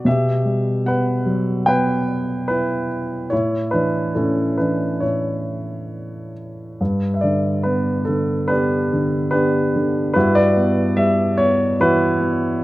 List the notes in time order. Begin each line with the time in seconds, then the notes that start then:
0.05 B2 G4 E5
0.45 G3
0.85 B3 B4 F#5
1.26 F#3
1.66 B3 B4 G5
2.48 E4 B4
3.30 A2 E4 C#5
3.71 E3 D4 B4
4.15 A2 C#4 A4
4.58 E3 D4 B4
5.00 A2 E4 C#5
6.81 G2
7.14 E5
7.21 D3 D5
7.63 B3 B4
8.05 D3 A4
8.48 B3 D4 G4 B4
8.93 D3
9.31 B3 D4 G4 B4
9.76 D3
10.14 G2 E4 F#4 B4
10.35 F#4 B4 D5
10.57 B3
10.97 G3 E5
11.38 B3 C#5
11.80 E3 E4 F#4 B4
12.20 B3